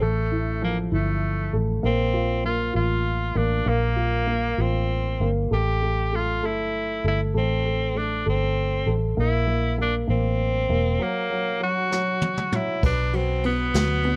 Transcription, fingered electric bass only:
0.01 A1
0.92 G1
1.53 A1
1.84 A#1
2.75 A1
3.36 A1
3.66 A#1
4.58 A1
5.20 G1
5.51 A1
6.43 G1
7.04 G1
7.35 A1
8.26 G1
8.86 A1
9.18 A#1
10.09 A1
10.69 E1
12.83 B1
13.74 D2

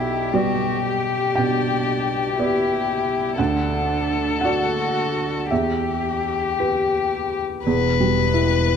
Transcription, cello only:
Already playing: E4
0.33 F#4
0.84 G4
1.36 D4
2.37 E4
3.41 D4
4.43 F#4
5.51 G4

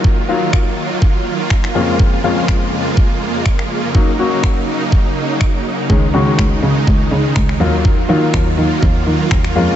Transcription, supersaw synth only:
Already playing: D#3 F#3 A#3 F4
1.75 F2 C#3 G#3
3.95 F#3 D#4
5.90 D#3 G#3 D#4
7.61 F#3 A#3 F4
9.56 C#3 G#3

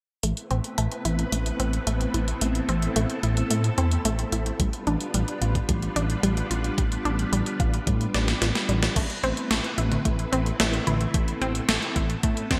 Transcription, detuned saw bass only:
0.23 A1
0.51 A1
0.78 A1
1.05 A1
1.32 A1
1.60 A1
1.87 A1
2.14 A1
2.41 A1
2.69 A1
2.96 A1
3.23 A1
3.50 A2
3.78 E2
4.05 A1
4.32 A1
4.60 A1
4.87 A1
5.14 A1
5.41 A1
5.69 A1
5.96 A1
6.23 A1
6.51 A1
6.78 A1
7.05 A1
7.32 A1
7.60 A1
7.87 A2
8.14 A1
8.42 A1
8.69 A1
8.96 A1
9.23 A1
9.51 A1
9.78 A1
10.05 A1
10.33 A1
10.60 A1
10.87 A1
11.14 A1
11.41 A1
11.69 A1
11.96 A1
12.23 A2
12.51 E2

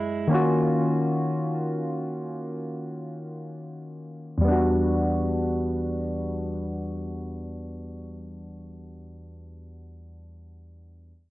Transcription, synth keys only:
0.27 D#3 A#3 C#4
0.33 F4 F#4
4.38 E2 G3
4.45 B3 D4
4.51 F#4

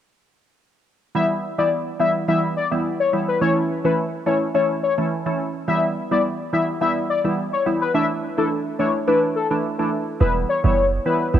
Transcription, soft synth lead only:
1.15 E5
1.59 D5
2.00 E5
2.28 E5
2.57 D5
3.00 C#5
3.28 B4
3.42 C#5
3.85 B4
4.27 C#5
4.55 C#5
4.83 C#5
5.68 E5
6.12 D5
6.53 E5
6.81 E5
7.10 D5
7.53 C#5
7.81 B4
7.94 E5
8.38 A4
8.79 C#5
9.08 B4
9.36 A4
10.21 B4
10.49 C#5
10.64 C#5
11.06 B4

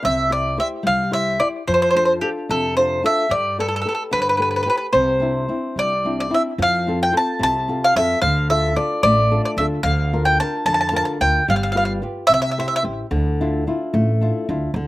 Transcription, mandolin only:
0.05 E5
0.32 D5
0.60 E5
0.87 F5
1.13 E5
1.40 D5
1.68 C5
1.74 C5
1.82 C5
1.91 C5
1.97 C5
2.05 C5
2.21 G4
2.51 A4
2.77 C5
3.06 E5
3.31 D5
3.60 A4
3.68 A4
3.76 A4
3.82 A4
3.89 A4
3.95 A4
4.13 B4
4.22 B4
4.29 B4
4.37 B4
4.42 B4
4.51 B4
4.56 B4
4.63 B4
4.70 B4
4.78 B4
4.93 C5
5.79 D5
6.20 D5
6.34 E5
6.62 F5
7.03 G5
7.17 A5
7.43 A5
7.84 F5
7.96 E5
8.22 F5
8.50 E5
8.76 D5
9.03 D5
9.45 D5
9.58 E5
9.83 F5
10.25 G5
10.40 A5
10.66 A5
10.74 A5
10.81 A5
10.89 A5
10.96 A5
11.05 A5
11.21 G5
11.50 F5
11.56 F5
11.63 F5
11.72 F5
11.77 F5
11.85 F5
12.27 E5
12.34 E5
12.42 E5
12.51 E5
12.60 E5
12.68 E5
12.76 E5

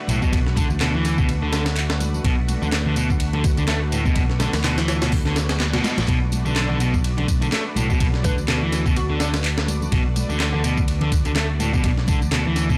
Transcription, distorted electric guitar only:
0.09 A2
0.22 B2
0.33 B2
0.57 D3
0.81 B2
0.94 E3
1.18 B2
1.42 D3
1.53 D3
2.25 B2
2.62 D3
2.86 D3
2.97 B2
3.34 D3
3.58 D3
3.68 A3
3.92 A2
4.06 B2
4.16 B2
4.40 D3
4.64 B2
4.78 E3
5.02 B2
5.26 D3
5.74 B2
5.84 B2
6.08 B2
6.46 D3
6.69 D3
6.81 B2
7.18 D3
7.42 D3
7.52 A3
7.76 A2
7.90 B2
8.00 B2
8.24 D3
8.48 B2
8.62 E3
8.86 B2
9.10 D3
9.20 D3
9.92 B2
10.30 D3
10.54 D3
10.64 B2
11.02 D3
11.26 D3
11.36 A3
11.60 A2
11.74 B2
11.84 B2
12.08 D3
12.32 B2
12.46 E3
12.69 B2

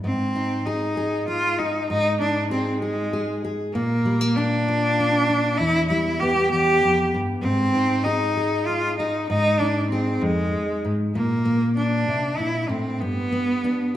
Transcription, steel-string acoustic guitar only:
0.04 G#2
0.36 D#4
0.67 G#4
0.97 G#4
1.28 D#4
1.59 G#4
1.90 G#2
2.22 D#4
2.51 G#4
2.82 G#4
3.13 G#4
3.45 G#4
3.75 A#2
4.05 G3
4.21 A#3
4.37 D4
4.68 F4
5.00 D4
5.30 F4
5.59 E2
5.90 G3
6.22 B3
6.52 E2
6.83 F2
7.14 G2
7.43 G#2
7.75 D#4
8.06 G#4
8.37 G#4
8.69 D#4
9.00 G#4
9.30 G#2
9.61 D#4
9.92 G#4
10.21 F2
10.85 G#2
11.15 A#2
11.45 A#3
11.77 D4
12.08 C3
12.39 A#2
12.69 A2
13.01 G2
13.32 B3
13.64 D4

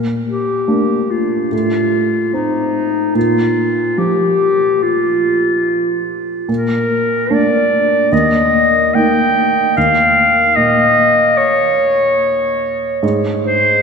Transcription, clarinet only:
0.28 G4
1.11 F4
1.53 F4
2.34 D#4
3.16 F4
3.98 G4
4.83 F4
6.50 A#4
7.33 D5
8.12 D#5
8.95 G5
9.77 F5
10.56 D#5
11.37 C#5
13.43 C5

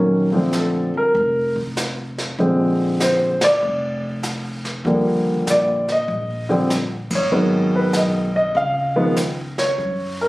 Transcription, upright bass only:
Already playing: A#1
0.94 F2
1.15 F1
2.38 A#1
3.62 F1
4.85 D#2
5.46 A#2
6.08 A#1
7.10 G1
7.32 G#1
7.94 B1
8.55 C#2
9.78 F#2

